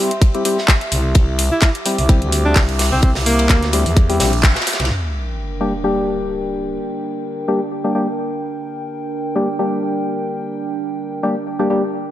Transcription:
Already playing: G4 E5 C6
0.00 G3 C4 E4 G4
0.11 closed hi-hat
0.22 kick, closed hi-hat, ride
0.34 G3 C4 E4 G4, closed hi-hat
0.45 G3 C4 E4 G4, open hi-hat, ride
0.58 snare
0.68 kick, snare, clap, closed hi-hat, ride
0.81 closed hi-hat
0.92 C2, open hi-hat, ride
1.15 C2 D6, kick, closed hi-hat, ride
1.39 open hi-hat, ride
1.52 E4
1.61 E4, kick, snare, clap, closed hi-hat, ride
1.75 closed hi-hat
1.86 G3 C4 E4 G4, open hi-hat, ride
1.98 C2, open hi-hat
2.09 G3 C4 E4 G4, kick, closed hi-hat, ride
2.22 D2, closed hi-hat
2.32 open hi-hat, ride
2.45 D4
2.55 C2, kick, snare, clap, closed hi-hat, open hi-hat
2.69 closed hi-hat
2.79 snare, open hi-hat
2.92 C2 C4
3.02 C4, kick, closed hi-hat, ride
3.15 C2, snare, open hi-hat
3.26 A#3, open hi-hat
3.39 closed hi-hat, ride
3.49 D2, kick, snare, clap, closed hi-hat, ride
3.63 snare, closed hi-hat
3.73 G3 C4 E4 G4, open hi-hat, ride
3.86 E2, open hi-hat
3.97 kick, closed hi-hat, ride
4.09 G3 C4 E4 G4, open hi-hat
4.20 A#1 G3 C4 E4 G4, snare, open hi-hat
4.33 closed hi-hat
4.43 kick, snare, clap, closed hi-hat, ride
4.56 snare, closed hi-hat, ride
4.60 snare, ride
4.67 snare, open hi-hat, ride
4.73 snare, ride
4.80 C2, snare, closed hi-hat, ride
4.84 snare, ride
4.90 D4 A#4 G5, sub drop
5.61 G3 A#3 D4 G4
5.84 G3 A#3 D4 G4
7.48 G3 A#3 D4 G4
7.84 G3 A#3 D4 G4
7.95 G3 A#3 D4 G4
9.36 G3 A#3 D4 G4
9.59 G3 A#3 D4 G4
11.23 G3 A#3 D4 G4
11.59 G3 A#3 D4 G4
11.70 G3 A#3 D4 G4

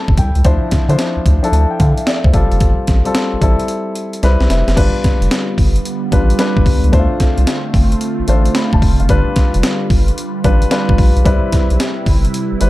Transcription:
Already playing: G3 C4 E4 A4 A5 B5
0.08 G1, kick
0.17 C2 G5, kick, closed hi-hat
0.35 C#2, closed hi-hat
0.45 D2 F3 D4 E4 C5, kick, closed hi-hat
0.71 D3, kick, snare, closed hi-hat
0.89 D3 F3 D4 E4 C5, closed hi-hat
0.99 snare, closed hi-hat
1.16 D2
1.26 D2, kick, closed hi-hat
1.43 F3 D4 E4 A4, closed hi-hat
1.52 D2 A5, closed hi-hat
1.71 G5
1.80 D3 F5, kick, closed hi-hat
1.97 E5, closed hi-hat
2.07 D5, snare, closed hi-hat
2.24 D2 C5, kick
2.33 G1 G3 C4 F4 A4, kick, closed hi-hat
2.52 F#1, closed hi-hat
2.60 G1, kick, closed hi-hat
2.87 A1, kick, snare, closed hi-hat
3.05 G3 C4 F4 A4, closed hi-hat
3.15 snare, closed hi-hat
3.33 A1
3.41 A1 G3 C4 E4 A4, kick, closed hi-hat
3.59 closed hi-hat
3.68 closed hi-hat
3.95 closed hi-hat
4.13 closed hi-hat
4.23 C2 G3 C4 E4 B4 B5, snare, closed hi-hat
4.40 B1, snare
4.50 F1 E5, snare, closed hi-hat
4.67 F#1, snare, closed hi-hat
4.76 G1 D3 G3 B3 D4 F4 B4, kick, closed hi-hat, crash
5.04 kick, snare, closed hi-hat
5.21 F1, closed hi-hat
5.31 snare, closed hi-hat
5.58 G1, kick, open hi-hat
5.76 closed hi-hat
5.85 closed hi-hat
6.12 A1 G3 D4 F4 B4, kick, closed hi-hat
6.30 closed hi-hat
6.39 G3 D4 F4 B4, snare, closed hi-hat
6.57 G1, kick
6.66 C2, kick, open hi-hat
6.84 C#2, closed hi-hat
6.92 D2 A3 C4 D4 E4 C5, kick, closed hi-hat
6.99 F4
7.20 kick, snare, closed hi-hat
7.38 C2, closed hi-hat
7.47 snare, closed hi-hat
7.74 G1, kick, open hi-hat
7.92 closed hi-hat
8.01 closed hi-hat
8.19 A1
8.28 A1 A3 D4 F4 C5, closed hi-hat
8.45 closed hi-hat
8.55 B5, snare, closed hi-hat
8.73 F1 A5, kick
8.82 F1, kick, open hi-hat
9.00 F#1 F5, closed hi-hat
9.08 G1 G3 D4 F4 B4, kick, closed hi-hat
9.36 kick, snare, closed hi-hat
9.54 F1, closed hi-hat
9.63 snare, closed hi-hat
9.90 G1, kick, open hi-hat
10.08 closed hi-hat
10.18 closed hi-hat
10.44 A1 G3 D4 F4 B4, kick, closed hi-hat
10.62 closed hi-hat
10.71 G3 D4 F4 B4, snare, closed hi-hat
10.89 G1, kick
10.98 A#1, kick, open hi-hat
11.16 B1, closed hi-hat
11.25 C2 C3 G3 C4 E4 B4, kick, closed hi-hat
11.52 kick, snare, closed hi-hat
11.70 B1, closed hi-hat
11.80 snare, closed hi-hat
12.06 G1, kick, open hi-hat
12.25 closed hi-hat
12.34 closed hi-hat
12.52 G1
12.60 G1 G3 C4 E4 B4, closed hi-hat

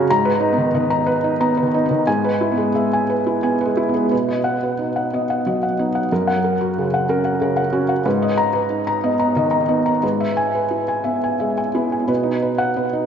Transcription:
Already playing: F#2 C#3 C#4 F#4 C#5 F#5 A#5
0.10 G#2 A#5
0.25 B4
0.40 D#4
0.53 B3
0.58 D#3
0.74 D#3 D#5
0.90 A#5
1.06 B4
1.24 D#4
1.40 B3 A#5
1.57 B4
1.63 D#3
1.74 D#4
1.86 B3
1.91 D#3
2.07 G#2 G#5
2.24 B4
2.41 E4
2.52 B3
2.58 G#3
2.74 G#3 E5
2.93 G#5
3.10 B4
3.27 E4
3.43 B3 G#5
3.61 B4
3.65 G#3
3.77 E4
3.89 B3
3.94 G#3
4.11 B2 B4
4.29 D#5
4.44 F#5
4.63 B4
4.79 D#4
4.96 F#5
5.13 B3 D#5
5.30 F#5
5.46 F#3 D#5
5.63 F#5
5.79 B3 D#4
5.95 F#5
6.12 F#2 A#4
6.27 F#5
6.44 A#4
6.61 F#4
6.78 C#3
6.94 F#5
7.09 C#4 A#4
7.25 F#5
7.42 C#3 A#4
7.57 F#5
7.72 C#4 F#4
7.89 F#5
8.05 G#2 B4
8.22 D#5
8.37 A#5
8.53 B4
8.70 D#4
8.87 A#5
9.04 B3 D#5
9.19 A#5
9.36 D#3 D#5
9.51 A#5
9.69 B3 D#4
9.86 A#5
10.03 G#2 B4
10.20 E5
10.37 G#5
10.55 B4
10.71 E4
10.88 G#5
11.04 B3 E5
11.24 G#5
11.40 G#3 E5
11.58 G#5
11.75 B3 E4
11.92 G#5
12.08 B2 B4
12.23 D#4
12.42 B4
12.58 F#5
12.76 B3 B4
12.93 D#4

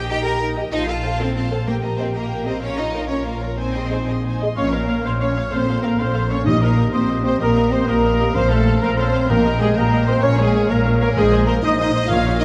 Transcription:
Already playing: A#1 D#5
0.09 D#4 G4 A#4 D#5 G5 A#5
0.24 G4 A#4 D#5 G5 A#5
0.41 D#4 A#4 G5 A#5
0.56 G4 D#5 G5
0.72 A#1 D#4 F4 C5 D#5 F5 A5
0.87 F4 A4 F5 A5
0.91 F5
1.03 F4 A4 C5 F5 A5
1.19 C4 A4 C5 F5 A5
1.35 C4 F4 C5 F5 A5
1.50 A4 C5 F5 A5
1.66 A#3 G4 A#4 G5
1.82 G4 A#4 D#5 A#5
1.97 C4 G4 A#4 C5 D#5 G5
2.01 G4
2.14 A#3 G4 A#4 D#5 A#5
2.29 G4 A#4 G5
2.45 C4 G4 A#4 C5 D#5 A#5
2.61 C#4 F4 A#4 C#5 F5
2.76 D#4 F4 A#4 C#5 D#5 A#5
2.92 F4 A#4 C#5 F5
3.08 C#4 F4 A#4 C#5 A#5
3.25 A#3 F4 A#4 F5
3.40 F4 A#4 C#5 A#5
3.57 C4 D#4 C5 G#5
3.75 G#4 D#5 C6
3.91 D#4 G#4 C5 D#5 G#5
4.09 G#4 D#5 C6
4.26 D#4 C5 G#5
4.42 G#4 D#5 C6
4.55 A#1 A#2 C#4 C#5 F5 C#6
4.71 A#3 A#4 C#5 F5 A#5
4.76 A#4
4.88 C#5 F5
5.04 A#1 A#2 C5 C#5 F5 C6
5.08 C4
5.20 C#4 C#5 F5 C#6
5.37 C#5 F5
5.51 A#1 A#2 C4 A4 C5 F5 C6
5.68 A4 F5
5.82 A#3 A4 A#4 F5 A#5
5.98 A#1 A#2 C4 A4 C5 F5 C6
6.14 A4 F5
6.29 C#4 A4 C#5 F5 C#6
6.33 C#5
6.46 A#1 A#2 D#4 G4 D#5 D#6
6.61 A#3 G4 A#4 D#5 A#5
6.77 G4 D#5
6.91 A#1 A#2 G4 C5 D#5 C6
6.95 C4
7.08 G4 D#5
7.23 C4 G4 C5 D#5 C6
7.39 A#1 A#2 A#3 G4 A#4 D#5 A#5
7.54 G4 D#5
7.71 C4 G4 C5 D#5 C6
7.86 A#1 A#2 A#3 G4 A#4 D#5 A#5
8.03 G4 D#5
8.19 G4 D#5
8.34 A#1 A#2 C4 C5 F5 C6
8.49 A3 A4 C5 F5 A5
8.53 A4
8.67 C5 F5
8.80 A#1 A#2 A#3 A#4 C5 F5 A#5
8.96 C4 A4 C5 C#5 F5 C6
9.13 C5 F5
9.28 A#1 A#2 A#3 G4 A#4 D#5 G5 A#5
9.44 G4 D#5
9.60 G#3 G4 G#4 D#5 G#5
9.75 A#1 A#2 A#3 G4 A#4 D#5 G5 A#5
9.91 G4 D#5
10.06 G4 C5 D#5 C6
10.10 C4
10.21 A#1 A#2 C#4 A#4 C#5 F5 C#6
10.37 G#3 G#4 A#4 C#5 G#5
10.53 A#4 C#5
10.69 A#1 A#2 A#3 A#4 C#5 F5 A#5
10.84 A#4 C#5
11.00 A#3 A#4 C#5 A#5
11.14 A#1 A#2 G#4 C5 D#5 G#5
11.18 G#3 D#5
11.32 C5 D#5
11.46 A#3 A#4 C5 D#5 A#5
11.61 A#1 A#2 D#4 C5 D#5 D#6
11.75 D#4 D#5
11.79 C5 D#5 D#6
11.95 C5 D#5
12.07 A#1 A#2 F4 A#4 C#5 F5 F6
12.11 C#5
12.25 A#4 C#5
12.39 D#4 A#4 C#5 D#5

